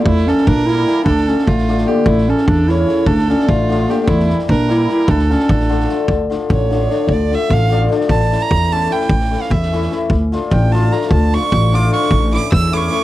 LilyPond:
<<
  \new Staff \with { instrumentName = "Violin" } { \time 5/8 \key d \minor \tempo 4 = 149 e'8 a'8 bes'8 bes'4 | a'8 a'8 f'4 g'8 | e'8 a'8 a'8 cis''4 | a'8 a'8 f'4 g'16. g'32 |
e'8 r8 bes'8 bes'4 | a'8 a'8 a'4. | r4 cis''4. | d''8 e''8 f''8 r4 |
a''8. bes''8. a''8 g''8~ | g''8. f''16 e''4 r8 | r4 g''8 a''8 bes''8 | a''8 cis'''4 d'''8 cis'''8~ |
cis'''8 d'''8 e'''8 d'''32 cis'''32 d'''16 cis'''8 | }
  \new Staff \with { instrumentName = "Clarinet" } { \time 5/8 \key d \minor a8 cis'8 d'8 e'4 | d'8 cis'8 a4 bes8 | a8 cis'8 d'8 e'4 | d'8 cis'8 a4 bes16. bes32 |
a8 r8 d'8 e'4 | d'8 cis'8 d'4. | r2 r8 | r2 r8 |
r2 r8 | r2 r8 | r2 r8 | r2 r8 |
r2 r8 | }
  \new Staff \with { instrumentName = "Hammered dulcimer" } { \time 5/8 \key d \minor r8 <e g bes e'>8 r8 <e g bes e'>8 <e g bes e'>8 | r8 <d f a d'>8 r8 <d f a d'>8 <d f a d'>8 | r8 <cis e a cis'>8 r8 <cis e a cis'>8 <cis e a cis'>8 | r8 <d f a d'>8 r8 <d f a d'>8 <d f a d'>8 |
r8 <e g bes e'>8 r8 <e g bes e'>8 <e g bes e'>8 | r8 <d f a d'>8 r8 <d f a d'>8 <d f a d'>8 | r8 <d f a d'>8 r8 <d f a d'>8 <d f a d'>8 | r8 <d f a d'>8 r8 <d f a d'>8 <d f a d'>8 |
r8 <e a cis' e'>8 r8 <e a cis' e'>8 <e a cis' e'>8 | r8 <e a cis' e'>8 r8 <e a cis' e'>8 <e a cis' e'>8 | r8 <f a d' f'>8 r8 <f a d' f'>8 <f a d' f'>8 | r8 <f a d' f'>8 r8 <f a d' f'>8 <f a d' f'>8 |
r8 <e a cis' e'>8 r8 <e a cis' e'>8 <e a cis' e'>8 | }
  \new Staff \with { instrumentName = "Upright bass" } { \clef bass \time 5/8 \key d \minor e,4 bes,4. | d,4 a,,4. | a,,4 e,4. | d,4 a,,4. |
e,4 bes,4. | d,4 a,,4. | d,4 a,,4. | d,4 a,,4. |
a,,4 e,4. | a,,4 e,4. | d,4 a,,4. | d,4 a,,4. |
a,,4 e,4. | }
  \new DrumStaff \with { instrumentName = "Drums" } \drummode { \time 5/8 bd16 sn16 sn16 sn16 bd8 sn8 sn8 | bd16 sn16 sn16 sn16 bd16 sn16 sn16 sn8. | bd16 sn8 sn16 bd8 sn8 sn8 | bd16 sn16 sn16 sn16 bd8 sn8 sn8 |
bd16 sn16 sn16 sn16 bd8 sn8 sn8 | bd16 sn16 sn16 sn16 bd16 sn16 sn16 sn16 sn8 | bd8 sn8 bd8 sn8 sn8 | bd8 sn8 bd8 sn8 sn16 sn16 |
bd8 sn8 bd4 sn16 sn16 | bd16 sn16 sn16 sn16 bd16 sn16 sn16 sn16 sn8 | bd8 sn8 bd8 sn8 sn16 sn16 | bd8 sn8 bd8 sn8 sn16 sn16 |
bd8 sn8 bd8 sn8 sn8 | }
>>